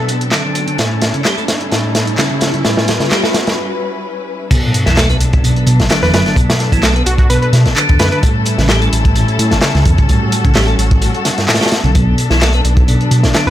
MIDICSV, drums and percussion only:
0, 0, Header, 1, 2, 480
1, 0, Start_track
1, 0, Key_signature, 2, "minor"
1, 0, Tempo, 465116
1, 812, Time_signature, 4, 2, 24, 8
1, 13932, End_track
2, 0, Start_track
2, 0, Title_t, "Drums"
2, 87, Note_on_c, 9, 42, 72
2, 90, Note_off_c, 9, 42, 0
2, 90, Note_on_c, 9, 42, 72
2, 193, Note_off_c, 9, 42, 0
2, 218, Note_on_c, 9, 42, 41
2, 322, Note_off_c, 9, 42, 0
2, 325, Note_on_c, 9, 38, 76
2, 330, Note_on_c, 9, 39, 99
2, 330, Note_on_c, 9, 42, 30
2, 337, Note_off_c, 9, 42, 0
2, 337, Note_on_c, 9, 42, 90
2, 428, Note_off_c, 9, 38, 0
2, 434, Note_off_c, 9, 39, 0
2, 440, Note_off_c, 9, 42, 0
2, 569, Note_on_c, 9, 42, 67
2, 672, Note_off_c, 9, 42, 0
2, 697, Note_on_c, 9, 42, 41
2, 800, Note_off_c, 9, 42, 0
2, 809, Note_on_c, 9, 42, 32
2, 813, Note_off_c, 9, 42, 0
2, 813, Note_on_c, 9, 42, 82
2, 817, Note_on_c, 9, 38, 72
2, 916, Note_off_c, 9, 42, 0
2, 920, Note_off_c, 9, 38, 0
2, 1048, Note_on_c, 9, 42, 73
2, 1054, Note_off_c, 9, 42, 0
2, 1054, Note_on_c, 9, 38, 76
2, 1054, Note_on_c, 9, 42, 65
2, 1157, Note_off_c, 9, 38, 0
2, 1157, Note_off_c, 9, 42, 0
2, 1177, Note_on_c, 9, 42, 41
2, 1280, Note_off_c, 9, 42, 0
2, 1290, Note_on_c, 9, 38, 77
2, 1290, Note_on_c, 9, 39, 94
2, 1290, Note_on_c, 9, 42, 29
2, 1298, Note_off_c, 9, 42, 0
2, 1298, Note_on_c, 9, 42, 95
2, 1393, Note_off_c, 9, 38, 0
2, 1393, Note_off_c, 9, 39, 0
2, 1401, Note_off_c, 9, 42, 0
2, 1421, Note_on_c, 9, 42, 40
2, 1524, Note_off_c, 9, 42, 0
2, 1530, Note_on_c, 9, 42, 72
2, 1531, Note_on_c, 9, 38, 78
2, 1538, Note_off_c, 9, 42, 0
2, 1538, Note_on_c, 9, 42, 65
2, 1634, Note_off_c, 9, 38, 0
2, 1641, Note_off_c, 9, 42, 0
2, 1658, Note_on_c, 9, 42, 41
2, 1762, Note_off_c, 9, 42, 0
2, 1770, Note_on_c, 9, 42, 33
2, 1777, Note_off_c, 9, 42, 0
2, 1777, Note_on_c, 9, 42, 79
2, 1778, Note_on_c, 9, 38, 75
2, 1880, Note_off_c, 9, 42, 0
2, 1881, Note_off_c, 9, 38, 0
2, 2011, Note_on_c, 9, 42, 70
2, 2012, Note_on_c, 9, 38, 79
2, 2017, Note_off_c, 9, 42, 0
2, 2017, Note_on_c, 9, 42, 63
2, 2115, Note_off_c, 9, 38, 0
2, 2120, Note_off_c, 9, 42, 0
2, 2139, Note_on_c, 9, 42, 42
2, 2243, Note_off_c, 9, 42, 0
2, 2249, Note_on_c, 9, 39, 103
2, 2249, Note_on_c, 9, 42, 30
2, 2251, Note_off_c, 9, 42, 0
2, 2251, Note_on_c, 9, 42, 83
2, 2257, Note_on_c, 9, 38, 82
2, 2352, Note_off_c, 9, 39, 0
2, 2354, Note_off_c, 9, 42, 0
2, 2360, Note_off_c, 9, 38, 0
2, 2485, Note_on_c, 9, 42, 85
2, 2491, Note_off_c, 9, 42, 0
2, 2491, Note_on_c, 9, 42, 69
2, 2497, Note_on_c, 9, 38, 89
2, 2595, Note_off_c, 9, 42, 0
2, 2601, Note_off_c, 9, 38, 0
2, 2619, Note_on_c, 9, 42, 40
2, 2723, Note_off_c, 9, 42, 0
2, 2731, Note_on_c, 9, 38, 92
2, 2731, Note_on_c, 9, 42, 33
2, 2734, Note_off_c, 9, 42, 0
2, 2734, Note_on_c, 9, 42, 81
2, 2834, Note_off_c, 9, 38, 0
2, 2837, Note_off_c, 9, 42, 0
2, 2863, Note_on_c, 9, 38, 85
2, 2966, Note_off_c, 9, 38, 0
2, 2971, Note_on_c, 9, 42, 80
2, 2976, Note_off_c, 9, 42, 0
2, 2976, Note_on_c, 9, 42, 71
2, 2983, Note_on_c, 9, 38, 104
2, 3079, Note_off_c, 9, 42, 0
2, 3086, Note_off_c, 9, 38, 0
2, 3097, Note_on_c, 9, 38, 83
2, 3101, Note_on_c, 9, 42, 45
2, 3200, Note_off_c, 9, 38, 0
2, 3204, Note_off_c, 9, 42, 0
2, 3208, Note_on_c, 9, 42, 92
2, 3212, Note_off_c, 9, 42, 0
2, 3212, Note_on_c, 9, 39, 99
2, 3212, Note_on_c, 9, 42, 30
2, 3217, Note_on_c, 9, 38, 102
2, 3315, Note_off_c, 9, 39, 0
2, 3315, Note_off_c, 9, 42, 0
2, 3320, Note_off_c, 9, 38, 0
2, 3339, Note_on_c, 9, 38, 88
2, 3442, Note_off_c, 9, 38, 0
2, 3450, Note_on_c, 9, 38, 94
2, 3452, Note_on_c, 9, 42, 77
2, 3457, Note_off_c, 9, 42, 0
2, 3457, Note_on_c, 9, 42, 68
2, 3553, Note_off_c, 9, 38, 0
2, 3560, Note_off_c, 9, 42, 0
2, 3582, Note_on_c, 9, 42, 44
2, 3587, Note_on_c, 9, 38, 95
2, 3685, Note_off_c, 9, 42, 0
2, 3690, Note_off_c, 9, 38, 0
2, 4651, Note_on_c, 9, 49, 88
2, 4653, Note_on_c, 9, 36, 118
2, 4654, Note_on_c, 9, 42, 46
2, 4656, Note_off_c, 9, 42, 0
2, 4656, Note_on_c, 9, 42, 88
2, 4754, Note_off_c, 9, 49, 0
2, 4756, Note_off_c, 9, 36, 0
2, 4759, Note_off_c, 9, 42, 0
2, 4895, Note_on_c, 9, 42, 68
2, 4998, Note_off_c, 9, 42, 0
2, 5018, Note_on_c, 9, 38, 45
2, 5023, Note_on_c, 9, 42, 32
2, 5121, Note_off_c, 9, 38, 0
2, 5126, Note_off_c, 9, 42, 0
2, 5133, Note_on_c, 9, 38, 122
2, 5134, Note_on_c, 9, 39, 99
2, 5134, Note_on_c, 9, 42, 43
2, 5135, Note_off_c, 9, 42, 0
2, 5135, Note_on_c, 9, 42, 78
2, 5236, Note_off_c, 9, 38, 0
2, 5237, Note_off_c, 9, 39, 0
2, 5238, Note_off_c, 9, 42, 0
2, 5260, Note_on_c, 9, 42, 31
2, 5267, Note_off_c, 9, 42, 0
2, 5267, Note_on_c, 9, 42, 45
2, 5370, Note_off_c, 9, 42, 0
2, 5371, Note_on_c, 9, 42, 78
2, 5373, Note_off_c, 9, 42, 0
2, 5373, Note_on_c, 9, 42, 67
2, 5476, Note_off_c, 9, 42, 0
2, 5502, Note_on_c, 9, 42, 33
2, 5506, Note_on_c, 9, 36, 104
2, 5605, Note_off_c, 9, 42, 0
2, 5609, Note_off_c, 9, 36, 0
2, 5615, Note_on_c, 9, 42, 46
2, 5620, Note_off_c, 9, 42, 0
2, 5620, Note_on_c, 9, 42, 87
2, 5723, Note_off_c, 9, 42, 0
2, 5742, Note_on_c, 9, 42, 31
2, 5845, Note_off_c, 9, 42, 0
2, 5847, Note_on_c, 9, 42, 71
2, 5854, Note_off_c, 9, 42, 0
2, 5854, Note_on_c, 9, 42, 79
2, 5957, Note_off_c, 9, 42, 0
2, 5982, Note_on_c, 9, 42, 32
2, 5986, Note_on_c, 9, 38, 47
2, 6085, Note_off_c, 9, 42, 0
2, 6086, Note_on_c, 9, 42, 89
2, 6089, Note_off_c, 9, 38, 0
2, 6094, Note_off_c, 9, 42, 0
2, 6094, Note_on_c, 9, 39, 106
2, 6094, Note_on_c, 9, 42, 45
2, 6096, Note_on_c, 9, 38, 113
2, 6197, Note_off_c, 9, 39, 0
2, 6197, Note_off_c, 9, 42, 0
2, 6199, Note_off_c, 9, 38, 0
2, 6221, Note_on_c, 9, 42, 31
2, 6222, Note_on_c, 9, 38, 40
2, 6325, Note_off_c, 9, 38, 0
2, 6325, Note_off_c, 9, 42, 0
2, 6333, Note_on_c, 9, 42, 73
2, 6337, Note_on_c, 9, 38, 116
2, 6340, Note_off_c, 9, 42, 0
2, 6340, Note_on_c, 9, 42, 86
2, 6440, Note_off_c, 9, 38, 0
2, 6443, Note_off_c, 9, 42, 0
2, 6461, Note_on_c, 9, 42, 34
2, 6464, Note_on_c, 9, 38, 39
2, 6565, Note_off_c, 9, 42, 0
2, 6567, Note_off_c, 9, 38, 0
2, 6567, Note_on_c, 9, 36, 93
2, 6571, Note_on_c, 9, 42, 47
2, 6577, Note_off_c, 9, 42, 0
2, 6577, Note_on_c, 9, 42, 64
2, 6670, Note_off_c, 9, 36, 0
2, 6681, Note_off_c, 9, 42, 0
2, 6704, Note_on_c, 9, 38, 101
2, 6706, Note_on_c, 9, 42, 85
2, 6808, Note_off_c, 9, 38, 0
2, 6809, Note_off_c, 9, 42, 0
2, 6811, Note_on_c, 9, 38, 35
2, 6812, Note_on_c, 9, 42, 79
2, 6915, Note_off_c, 9, 38, 0
2, 6915, Note_off_c, 9, 42, 0
2, 6938, Note_on_c, 9, 36, 86
2, 6940, Note_on_c, 9, 42, 65
2, 6942, Note_off_c, 9, 42, 0
2, 6942, Note_on_c, 9, 42, 33
2, 7041, Note_off_c, 9, 36, 0
2, 7045, Note_off_c, 9, 42, 0
2, 7050, Note_on_c, 9, 42, 84
2, 7051, Note_on_c, 9, 38, 107
2, 7053, Note_off_c, 9, 42, 0
2, 7053, Note_on_c, 9, 39, 114
2, 7053, Note_on_c, 9, 42, 42
2, 7154, Note_off_c, 9, 38, 0
2, 7156, Note_off_c, 9, 39, 0
2, 7156, Note_off_c, 9, 42, 0
2, 7182, Note_on_c, 9, 42, 31
2, 7285, Note_off_c, 9, 42, 0
2, 7288, Note_on_c, 9, 42, 68
2, 7292, Note_off_c, 9, 42, 0
2, 7292, Note_on_c, 9, 42, 79
2, 7395, Note_off_c, 9, 42, 0
2, 7414, Note_on_c, 9, 36, 105
2, 7421, Note_on_c, 9, 42, 34
2, 7517, Note_off_c, 9, 36, 0
2, 7524, Note_off_c, 9, 42, 0
2, 7533, Note_on_c, 9, 42, 95
2, 7534, Note_off_c, 9, 42, 0
2, 7534, Note_on_c, 9, 42, 47
2, 7637, Note_off_c, 9, 42, 0
2, 7662, Note_on_c, 9, 42, 33
2, 7765, Note_off_c, 9, 42, 0
2, 7772, Note_on_c, 9, 42, 71
2, 7774, Note_on_c, 9, 38, 45
2, 7876, Note_off_c, 9, 42, 0
2, 7877, Note_off_c, 9, 38, 0
2, 7901, Note_on_c, 9, 42, 35
2, 7904, Note_on_c, 9, 38, 37
2, 8004, Note_off_c, 9, 42, 0
2, 8007, Note_off_c, 9, 38, 0
2, 8014, Note_on_c, 9, 39, 115
2, 8014, Note_on_c, 9, 42, 85
2, 8117, Note_off_c, 9, 39, 0
2, 8117, Note_off_c, 9, 42, 0
2, 8143, Note_on_c, 9, 42, 30
2, 8147, Note_on_c, 9, 36, 106
2, 8246, Note_off_c, 9, 42, 0
2, 8247, Note_on_c, 9, 42, 65
2, 8251, Note_off_c, 9, 36, 0
2, 8253, Note_off_c, 9, 42, 0
2, 8253, Note_on_c, 9, 42, 76
2, 8255, Note_on_c, 9, 38, 126
2, 8356, Note_off_c, 9, 42, 0
2, 8359, Note_off_c, 9, 38, 0
2, 8382, Note_on_c, 9, 42, 34
2, 8486, Note_off_c, 9, 42, 0
2, 8493, Note_on_c, 9, 36, 109
2, 8493, Note_on_c, 9, 42, 86
2, 8494, Note_off_c, 9, 42, 0
2, 8494, Note_on_c, 9, 42, 45
2, 8597, Note_off_c, 9, 36, 0
2, 8597, Note_off_c, 9, 42, 0
2, 8726, Note_on_c, 9, 42, 67
2, 8734, Note_off_c, 9, 42, 0
2, 8734, Note_on_c, 9, 42, 78
2, 8837, Note_off_c, 9, 42, 0
2, 8858, Note_on_c, 9, 38, 45
2, 8863, Note_on_c, 9, 42, 33
2, 8961, Note_off_c, 9, 38, 0
2, 8965, Note_on_c, 9, 38, 114
2, 8966, Note_off_c, 9, 42, 0
2, 8971, Note_on_c, 9, 42, 83
2, 8974, Note_off_c, 9, 42, 0
2, 8974, Note_on_c, 9, 39, 103
2, 8974, Note_on_c, 9, 42, 42
2, 9068, Note_off_c, 9, 38, 0
2, 9077, Note_off_c, 9, 39, 0
2, 9077, Note_off_c, 9, 42, 0
2, 9098, Note_on_c, 9, 42, 42
2, 9102, Note_off_c, 9, 42, 0
2, 9102, Note_on_c, 9, 42, 31
2, 9205, Note_off_c, 9, 42, 0
2, 9212, Note_on_c, 9, 42, 80
2, 9214, Note_off_c, 9, 42, 0
2, 9214, Note_on_c, 9, 42, 69
2, 9317, Note_off_c, 9, 42, 0
2, 9340, Note_on_c, 9, 36, 106
2, 9341, Note_on_c, 9, 42, 33
2, 9443, Note_off_c, 9, 36, 0
2, 9445, Note_off_c, 9, 42, 0
2, 9448, Note_on_c, 9, 42, 85
2, 9453, Note_off_c, 9, 42, 0
2, 9453, Note_on_c, 9, 42, 46
2, 9556, Note_off_c, 9, 42, 0
2, 9580, Note_on_c, 9, 42, 31
2, 9683, Note_off_c, 9, 42, 0
2, 9692, Note_on_c, 9, 42, 60
2, 9796, Note_off_c, 9, 42, 0
2, 9817, Note_on_c, 9, 38, 45
2, 9820, Note_on_c, 9, 42, 33
2, 9920, Note_off_c, 9, 38, 0
2, 9923, Note_off_c, 9, 42, 0
2, 9923, Note_on_c, 9, 38, 123
2, 9926, Note_on_c, 9, 42, 88
2, 9931, Note_off_c, 9, 42, 0
2, 9931, Note_on_c, 9, 39, 110
2, 9931, Note_on_c, 9, 42, 42
2, 10026, Note_off_c, 9, 38, 0
2, 10034, Note_off_c, 9, 39, 0
2, 10034, Note_off_c, 9, 42, 0
2, 10060, Note_on_c, 9, 42, 31
2, 10064, Note_on_c, 9, 38, 41
2, 10164, Note_off_c, 9, 42, 0
2, 10167, Note_off_c, 9, 38, 0
2, 10170, Note_on_c, 9, 42, 72
2, 10172, Note_on_c, 9, 36, 95
2, 10176, Note_off_c, 9, 42, 0
2, 10176, Note_on_c, 9, 42, 66
2, 10275, Note_off_c, 9, 36, 0
2, 10279, Note_off_c, 9, 42, 0
2, 10301, Note_on_c, 9, 42, 33
2, 10305, Note_on_c, 9, 36, 97
2, 10404, Note_off_c, 9, 42, 0
2, 10408, Note_off_c, 9, 36, 0
2, 10412, Note_on_c, 9, 42, 44
2, 10414, Note_off_c, 9, 42, 0
2, 10414, Note_on_c, 9, 42, 88
2, 10417, Note_on_c, 9, 36, 101
2, 10518, Note_off_c, 9, 42, 0
2, 10521, Note_off_c, 9, 36, 0
2, 10652, Note_on_c, 9, 42, 70
2, 10656, Note_off_c, 9, 42, 0
2, 10656, Note_on_c, 9, 42, 63
2, 10759, Note_off_c, 9, 42, 0
2, 10780, Note_on_c, 9, 36, 91
2, 10782, Note_on_c, 9, 42, 32
2, 10883, Note_off_c, 9, 36, 0
2, 10885, Note_off_c, 9, 42, 0
2, 10887, Note_on_c, 9, 42, 80
2, 10891, Note_off_c, 9, 42, 0
2, 10891, Note_on_c, 9, 39, 110
2, 10891, Note_on_c, 9, 42, 41
2, 10894, Note_on_c, 9, 38, 108
2, 10994, Note_off_c, 9, 39, 0
2, 10994, Note_off_c, 9, 42, 0
2, 10997, Note_off_c, 9, 38, 0
2, 11023, Note_on_c, 9, 42, 29
2, 11126, Note_off_c, 9, 42, 0
2, 11134, Note_on_c, 9, 42, 70
2, 11237, Note_off_c, 9, 42, 0
2, 11261, Note_on_c, 9, 42, 32
2, 11262, Note_on_c, 9, 36, 113
2, 11364, Note_off_c, 9, 42, 0
2, 11365, Note_off_c, 9, 36, 0
2, 11369, Note_on_c, 9, 42, 81
2, 11374, Note_off_c, 9, 42, 0
2, 11374, Note_on_c, 9, 42, 42
2, 11477, Note_off_c, 9, 42, 0
2, 11502, Note_on_c, 9, 42, 30
2, 11605, Note_off_c, 9, 42, 0
2, 11611, Note_on_c, 9, 38, 45
2, 11611, Note_on_c, 9, 42, 72
2, 11617, Note_off_c, 9, 42, 0
2, 11617, Note_on_c, 9, 42, 67
2, 11714, Note_off_c, 9, 38, 0
2, 11721, Note_off_c, 9, 42, 0
2, 11742, Note_on_c, 9, 42, 32
2, 11749, Note_on_c, 9, 38, 41
2, 11845, Note_off_c, 9, 42, 0
2, 11852, Note_off_c, 9, 38, 0
2, 11853, Note_on_c, 9, 39, 107
2, 11853, Note_on_c, 9, 42, 41
2, 11854, Note_on_c, 9, 38, 84
2, 11862, Note_off_c, 9, 42, 0
2, 11862, Note_on_c, 9, 42, 69
2, 11913, Note_off_c, 9, 38, 0
2, 11913, Note_on_c, 9, 38, 99
2, 11920, Note_off_c, 9, 42, 0
2, 11920, Note_on_c, 9, 42, 66
2, 11956, Note_off_c, 9, 39, 0
2, 11982, Note_off_c, 9, 42, 0
2, 11982, Note_on_c, 9, 42, 28
2, 11984, Note_off_c, 9, 38, 0
2, 11984, Note_on_c, 9, 38, 97
2, 11992, Note_off_c, 9, 42, 0
2, 11992, Note_on_c, 9, 42, 72
2, 12033, Note_off_c, 9, 38, 0
2, 12033, Note_on_c, 9, 38, 93
2, 12044, Note_off_c, 9, 42, 0
2, 12044, Note_on_c, 9, 42, 74
2, 12091, Note_off_c, 9, 42, 0
2, 12091, Note_on_c, 9, 42, 71
2, 12095, Note_off_c, 9, 38, 0
2, 12095, Note_on_c, 9, 38, 112
2, 12096, Note_off_c, 9, 42, 0
2, 12096, Note_on_c, 9, 42, 62
2, 12198, Note_off_c, 9, 38, 0
2, 12199, Note_off_c, 9, 42, 0
2, 12220, Note_on_c, 9, 42, 30
2, 12323, Note_off_c, 9, 42, 0
2, 12331, Note_on_c, 9, 42, 39
2, 12332, Note_off_c, 9, 42, 0
2, 12332, Note_on_c, 9, 42, 81
2, 12336, Note_on_c, 9, 36, 101
2, 12435, Note_off_c, 9, 42, 0
2, 12439, Note_off_c, 9, 36, 0
2, 12571, Note_on_c, 9, 42, 73
2, 12587, Note_off_c, 9, 42, 0
2, 12587, Note_on_c, 9, 42, 68
2, 12690, Note_off_c, 9, 42, 0
2, 12698, Note_on_c, 9, 38, 43
2, 12702, Note_on_c, 9, 42, 29
2, 12801, Note_off_c, 9, 38, 0
2, 12805, Note_off_c, 9, 42, 0
2, 12810, Note_on_c, 9, 42, 83
2, 12813, Note_off_c, 9, 42, 0
2, 12813, Note_on_c, 9, 39, 101
2, 12813, Note_on_c, 9, 42, 40
2, 12816, Note_on_c, 9, 38, 109
2, 12916, Note_off_c, 9, 39, 0
2, 12916, Note_off_c, 9, 42, 0
2, 12919, Note_off_c, 9, 38, 0
2, 12935, Note_on_c, 9, 42, 41
2, 12941, Note_off_c, 9, 42, 0
2, 12941, Note_on_c, 9, 42, 28
2, 13044, Note_off_c, 9, 42, 0
2, 13051, Note_on_c, 9, 42, 74
2, 13052, Note_off_c, 9, 42, 0
2, 13052, Note_on_c, 9, 42, 68
2, 13156, Note_off_c, 9, 42, 0
2, 13177, Note_on_c, 9, 36, 103
2, 13181, Note_on_c, 9, 42, 31
2, 13280, Note_off_c, 9, 36, 0
2, 13284, Note_off_c, 9, 42, 0
2, 13293, Note_on_c, 9, 42, 41
2, 13297, Note_off_c, 9, 42, 0
2, 13297, Note_on_c, 9, 42, 83
2, 13401, Note_off_c, 9, 42, 0
2, 13423, Note_on_c, 9, 42, 29
2, 13526, Note_off_c, 9, 42, 0
2, 13531, Note_on_c, 9, 42, 72
2, 13534, Note_off_c, 9, 42, 0
2, 13534, Note_on_c, 9, 42, 71
2, 13637, Note_off_c, 9, 42, 0
2, 13658, Note_on_c, 9, 38, 50
2, 13661, Note_on_c, 9, 42, 31
2, 13761, Note_off_c, 9, 38, 0
2, 13765, Note_off_c, 9, 42, 0
2, 13770, Note_on_c, 9, 42, 85
2, 13772, Note_on_c, 9, 38, 108
2, 13775, Note_off_c, 9, 42, 0
2, 13775, Note_on_c, 9, 39, 107
2, 13775, Note_on_c, 9, 42, 39
2, 13876, Note_off_c, 9, 38, 0
2, 13878, Note_off_c, 9, 39, 0
2, 13878, Note_off_c, 9, 42, 0
2, 13932, End_track
0, 0, End_of_file